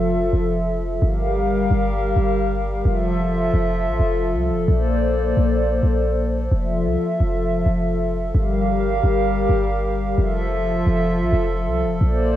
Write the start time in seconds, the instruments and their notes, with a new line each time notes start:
Already playing: 808-style bass F1, analog synth pad F3 F4 A4 E5
0.33 808-style bass F1
1.02 808-style bass G1, analog synth pad G3 G4 A#4 F5
1.71 808-style bass G1
2.16 808-style bass G1
2.85 808-style bass F1, analog synth pad F3 F4 A4 E5
3.54 808-style bass F1
3.88 808-style bass A1
4.00 808-style bass F1
4.34 808-style bass C2
4.51 808-style bass F1
4.68 808-style bass A#1, analog synth pad A#3 C5 D5
5.37 808-style bass A#1
5.83 808-style bass A#1
6.51 808-style bass F1, analog synth pad F3 F4 E5
6.86 808-style bass C2
7.20 808-style bass F1
7.66 808-style bass F1
8.35 808-style bass G1, analog synth pad G3 G4 A#4 F5
9.03 808-style bass G1
9.49 808-style bass G1
10.18 808-style bass F1, analog synth pad F3 F4 A4 E5
10.87 808-style bass F1
11.21 808-style bass A1
11.32 808-style bass F1
11.67 808-style bass C2
11.84 808-style bass F1
12.01 808-style bass A#1, analog synth pad A#3 C5 D5